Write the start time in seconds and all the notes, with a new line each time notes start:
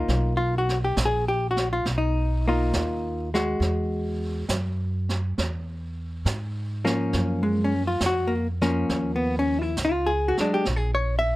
Already playing: A#3 D#4 F4
0.08 B1, brush sweep, snare
0.37 F4
0.58 F#4
0.69 snare
0.84 G4
0.97 A#1, snare, hi-hat pedal
1.05 G#4
1.28 G4
1.51 F#4
1.57 snare
1.73 F4
1.85 B1, brush sweep, snare
1.98 D#4
2.48 A#3 D#4 F4
2.73 D#2, snare, hi-hat pedal
3.34 G#3 F#4, snare
3.60 E2, brush sweep, snare
4.49 F#2, snare, hi-hat pedal
5.09 snare
5.38 E2, brush sweep, snare
6.25 G#2, snare, hi-hat pedal
6.85 F3 A#3 C#4, snare
7.13 F#2, brush sweep, snare
7.43 G#3
7.64 C#4
7.87 F4
8.01 F2, snare, hi-hat pedal
8.06 F#4
8.27 A#3
8.61 F3 A#3 C#4, snare
8.89 D#2, brush sweep, snare
9.16 B3
9.39 C#4
9.62 E4
9.77 C#2, snare, hi-hat pedal
9.85 F4
10.06 G#4
10.28 F#4
10.37 F#3 G#3 D4, muted upright bass stroke, snare
10.54 G4
10.65 A#1, brush sweep, snare
10.76 G#4
10.95 C#5
11.19 E5